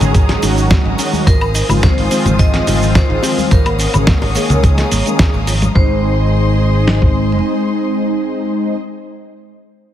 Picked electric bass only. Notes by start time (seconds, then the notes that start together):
0.01 G#1
0.43 G#1
0.85 G#1
1.27 G#1
1.69 G#1
1.98 G#1
2.25 G#1
2.67 G#1
3.10 G#1
3.52 G#1
3.94 G#1
4.22 G#1
4.35 muted picked electric bass stroke
4.50 C#2
4.92 G#1
5.34 G#1
5.75 G#1